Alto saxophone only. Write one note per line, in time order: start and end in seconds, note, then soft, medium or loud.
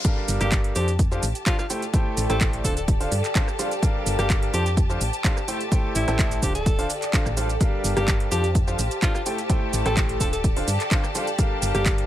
0.41 0.58 G4 loud
0.75 0.93 G4 medium
1.46 1.54 F4 medium
1.59 1.66 F4 medium
2.29 2.46 A4 medium
2.64 2.72 A4 medium
2.77 2.84 A4 medium
4.19 4.36 G4 medium
4.53 4.71 G4 medium
5.95 6.40 E4 medium
6.43 6.52 G4 medium
6.55 6.90 A4 medium
7.97 8.14 G4 medium
8.31 8.49 G4 medium
9.02 9.10 F4 medium
9.15 9.22 F4 medium
9.85 10.02 A4 medium
10.20 10.28 A4 medium
10.33 10.40 A4 medium
11.75 11.92 G4 medium